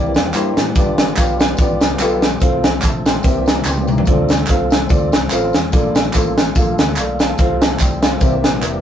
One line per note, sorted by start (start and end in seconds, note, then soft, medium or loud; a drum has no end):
0.00 0.12 C2 medium
0.00 0.74 E3 medium
0.00 2.38 G3 medium
0.00 0.16 A#3 medium
0.00 0.74 A#3 medium
0.00 0.72 C4 medium
0.00 0.16 E4 medium
0.00 0.16 G4 medium
0.00 2.38 G4 medium
0.00 0.16 D5 loud
0.14 0.31 E2 medium
0.14 0.25 F5 medium
0.14 snare loud
0.14 closed hi-hat medium
0.14 tambourine medium
0.26 0.34 G5 medium
0.34 0.53 G2 medium
0.34 0.58 A#3 medium
0.34 0.58 E4 medium
0.34 0.58 G4 medium
0.34 0.58 C5 medium
0.34 0.73 A#5 medium
0.34 clap medium
0.34 closed hi-hat medium
0.34 tambourine medium
0.57 0.73 A2 medium
0.57 snare medium
0.57 closed hi-hat medium
0.57 tambourine medium
0.75 1.11 G1 loud
0.75 1.37 G2 medium
0.75 2.40 D3 medium
0.75 2.40 B3 medium
0.75 0.99 B3 medium
0.75 3.22 F4 medium
0.75 0.99 F4 medium
0.75 1.00 G4 medium
0.75 1.00 D5 medium
0.75 kick loud
0.75 closed hi-hat medium
0.75 tambourine medium
0.98 snare loud
0.98 closed hi-hat medium
0.98 tambourine medium
1.17 1.53 B1 medium
1.17 1.41 B3 medium
1.17 1.41 F4 medium
1.17 1.41 G4 medium
1.17 1.41 F5 medium
1.17 kick medium
1.17 clap loud
1.17 closed hi-hat medium
1.17 tambourine medium
1.40 snare loud
1.40 closed hi-hat medium
1.40 tambourine medium
1.57 1.78 A1 medium
1.57 1.82 B3 medium
1.57 1.82 F4 medium
1.57 1.83 G4 medium
1.57 1.83 D5 medium
1.57 kick loud
1.57 closed hi-hat medium
1.57 tambourine medium
1.80 1.97 C2 medium
1.80 snare loud
1.80 closed hi-hat medium
1.80 tambourine medium
1.99 2.35 B1 medium
1.99 2.23 B3 medium
1.99 2.24 F4 medium
1.99 2.23 G4 medium
1.99 2.24 A4 loud
1.99 clap medium
1.99 closed hi-hat medium
1.99 tambourine medium
2.22 snare medium
2.22 closed hi-hat medium
2.22 tambourine soft
2.40 2.77 C2 loud
2.40 3.23 C3 medium
2.40 3.02 C3 medium
2.40 3.23 F3 medium
2.40 3.23 A3 medium
2.40 2.65 C4 medium
2.40 2.65 F4 medium
2.40 3.23 A4 medium
2.40 2.65 A4 medium
2.40 2.65 F5 medium
2.40 kick loud
2.40 closed hi-hat medium
2.40 tambourine medium
2.64 snare loud
2.64 closed hi-hat medium
2.64 tambourine medium
2.82 3.18 A#1 medium
2.82 3.05 E5 medium
2.82 3.05 A5 medium
2.82 kick medium
2.82 clap medium
2.82 closed hi-hat loud
2.82 tambourine medium
3.06 3.45 G5 medium
3.06 3.45 C6 medium
3.06 snare loud
3.06 closed hi-hat medium
3.06 tambourine medium
3.23 3.59 C2 medium
3.23 3.85 C3 medium
3.23 4.07 E3 medium
3.23 4.06 G3 medium
3.23 4.07 A#3 medium
3.23 3.47 C4 medium
3.23 5.71 C4 medium
3.23 3.47 G4 medium
3.23 4.07 G4 medium
3.23 3.48 A#4 medium
3.23 3.47 E5 medium
3.23 kick loud
3.23 closed hi-hat medium
3.23 tambourine medium
3.46 3.65 E5 medium
3.46 3.65 A#5 medium
3.46 snare loud
3.46 closed hi-hat medium
3.46 tambourine medium
3.65 4.01 C#2 medium
3.65 3.88 G5 medium
3.65 3.88 C6 medium
3.65 snare medium
3.65 clap medium
3.65 tambourine medium
3.77 high tom medium
3.87 4.29 E5 soft
3.87 4.28 A#5 medium
3.87 mid tom medium
3.87 tambourine medium
3.98 floor tom medium
4.05 4.42 D2 loud
4.05 4.68 D3 medium
4.05 5.71 D3 medium
4.05 8.18 A3 medium
4.05 4.31 C4 medium
4.05 4.31 F4 medium
4.05 8.18 F4 medium
4.05 4.31 A4 medium
4.05 5.72 A4 medium
4.05 4.31 D5 medium
4.05 kick loud
4.05 closed hi-hat medium
4.05 tambourine medium
4.29 snare loud
4.29 closed hi-hat medium
4.29 tambourine medium
4.47 4.84 C2 medium
4.47 4.72 C4 medium
4.47 4.72 F4 medium
4.47 4.73 A4 medium
4.47 4.73 F5 medium
4.47 kick medium
4.47 clap medium
4.47 closed hi-hat loud
4.47 tambourine loud
4.70 snare loud
4.70 closed hi-hat medium
4.70 tambourine medium
4.89 5.10 D2 medium
4.89 5.13 C4 medium
4.89 5.13 F4 medium
4.89 5.14 A4 medium
4.89 5.14 D5 medium
4.89 kick loud
4.89 closed hi-hat medium
4.89 tambourine medium
5.12 5.28 C2 medium
5.12 snare loud
5.12 closed hi-hat medium
5.12 tambourine medium
5.30 5.51 A1 medium
5.30 5.55 C4 medium
5.30 5.55 F4 medium
5.30 5.55 A4 medium
5.30 5.56 F5 loud
5.30 clap medium
5.30 closed hi-hat medium
5.30 tambourine loud
5.53 5.70 E2 medium
5.53 snare medium
5.53 closed hi-hat medium
5.53 tambourine medium
5.72 6.08 A#1 loud
5.72 6.34 A#2 medium
5.72 7.37 D3 medium
5.72 5.96 A#3 medium
5.72 7.37 A#3 medium
5.72 5.96 F4 medium
5.72 5.96 A4 medium
5.72 7.37 A4 medium
5.72 5.96 D5 medium
5.72 kick loud
5.72 closed hi-hat medium
5.72 tambourine medium
5.95 snare loud
5.95 closed hi-hat medium
5.95 tambourine medium
6.13 6.50 A1 medium
6.13 6.37 A#3 medium
6.13 6.38 F4 medium
6.13 6.38 A4 medium
6.13 6.38 C5 medium
6.13 kick medium
6.13 clap medium
6.13 closed hi-hat loud
6.13 tambourine medium
6.38 snare loud
6.38 closed hi-hat medium
6.38 tambourine medium
6.55 6.75 A#1 medium
6.55 6.79 A#3 medium
6.55 6.79 F4 medium
6.55 6.79 A4 medium
6.55 6.80 F5 medium
6.55 kick loud
6.55 closed hi-hat medium
6.55 tambourine medium
6.78 6.94 D2 medium
6.78 snare loud
6.78 closed hi-hat medium
6.78 tambourine soft
6.96 7.33 B1 medium
6.96 7.20 A4 medium
6.96 7.20 D5 medium
6.96 7.19 F5 medium
6.96 clap medium
6.96 closed hi-hat medium
6.96 tambourine medium
7.19 7.61 C5 medium
7.19 7.39 F5 medium
7.19 7.38 A5 medium
7.19 snare medium
7.19 closed hi-hat medium
7.19 tambourine medium
7.38 7.74 C2 medium
7.38 8.21 C3 medium
7.38 8.00 C3 medium
7.38 8.21 F3 medium
7.38 7.62 C4 medium
7.38 7.62 F4 medium
7.38 8.21 A4 medium
7.38 7.62 A4 medium
7.38 7.62 F5 medium
7.38 kick loud
7.38 closed hi-hat medium
7.38 tambourine medium
7.61 7.80 E5 medium
7.61 7.79 A5 medium
7.61 snare loud
7.61 closed hi-hat medium
7.61 tambourine medium
7.79 8.16 C2 medium
7.79 8.02 D5 medium
7.79 8.02 G5 medium
7.79 kick medium
7.79 clap medium
7.79 closed hi-hat loud
7.79 tambourine medium
8.02 8.43 C5 medium
8.02 8.42 F5 medium
8.02 snare loud
8.02 closed hi-hat medium
8.02 tambourine medium
8.21 8.44 C2 loud
8.21 8.81 C3 medium
8.21 8.81 E3 medium
8.21 8.81 G3 medium
8.21 8.81 A#3 medium
8.21 8.81 C4 medium
8.21 8.45 C4 medium
8.21 8.81 G4 medium
8.21 8.45 G4 medium
8.21 8.45 A#4 medium
8.21 8.45 E5 medium
8.21 kick loud
8.21 closed hi-hat medium
8.21 tambourine medium
8.44 8.60 A#1 medium
8.44 snare loud
8.44 closed hi-hat medium
8.44 tambourine soft
8.62 8.81 E1 loud
8.62 8.81 A#4 medium
8.62 8.81 E5 medium
8.62 clap medium
8.62 closed hi-hat medium
8.62 tambourine medium